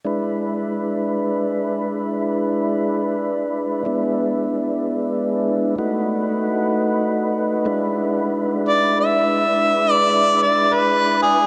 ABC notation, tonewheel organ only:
X:1
M:12/8
L:1/8
Q:3/8=63
K:Emix
V:1 name="Tonewheel organ"
[G,DEB]12 | [G,B,DE]6 [A,^DFB]6 | [G,DEB]12 |]